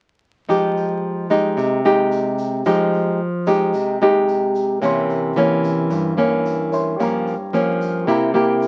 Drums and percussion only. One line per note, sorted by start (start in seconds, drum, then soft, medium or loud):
0.50 shaker medium
0.77 shaker soft
1.31 shaker medium
1.58 shaker medium
1.85 shaker soft
2.12 shaker medium
2.38 shaker medium
2.66 shaker medium
2.93 shaker soft
3.47 shaker medium
3.74 shaker medium
4.01 shaker soft
4.28 shaker medium
4.55 shaker medium
4.82 shaker medium
5.10 shaker soft
5.36 shaker soft
5.64 shaker medium
5.91 shaker medium
6.18 shaker soft
6.46 shaker soft
6.73 shaker medium
7.00 shaker medium
7.28 shaker soft
7.54 shaker soft
7.81 shaker medium
8.09 shaker medium
8.35 shaker soft
8.62 shaker medium